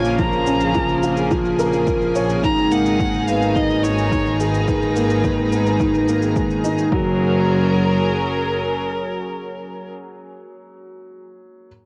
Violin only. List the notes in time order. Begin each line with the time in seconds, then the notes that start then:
Already playing: G#5
0.19 A#5
2.43 A#5
2.71 F#5
3.27 F5
3.56 D#5
3.84 C#5
4.40 B4
6.92 A#4